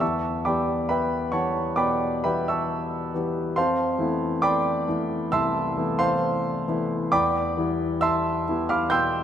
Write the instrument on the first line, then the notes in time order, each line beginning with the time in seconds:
grand piano
0.00 E2 E5 A5 C#6 E6
0.45 E3 G3 B3 G4 D5 G5 B5 D6
0.89 B4 E5 G5 B5
1.32 E3 G3 B3 G4 C#5 F#5 A5 C#6
1.76 B2 D5 G5 B5 D6
2.24 E3 G3 B3 G4 B4 E5 G5 B5
2.48 E5 A5 C#6 E6
3.14 E3 G3 B3 G4
3.56 F2 C5 F5 A5 C6
3.98 E3 A3 B3 E4
4.42 D5 G5 B5 D6
4.88 E3 A3 B3 E4
5.32 C2 E5 A5 C6 E6
5.77 E3 A3 B3 E4
5.99 C5 F5 A5 C6
6.68 E3 A3 B3 E4
7.12 E2 D5 G5 B5 D6
7.57 E3 G3 B3 E4
8.01 E5 A5 C6 E6
8.49 E3 G3 B3 E4
8.69 F5 B5 D6 F6
8.90 B2 G5 C6 E6 G6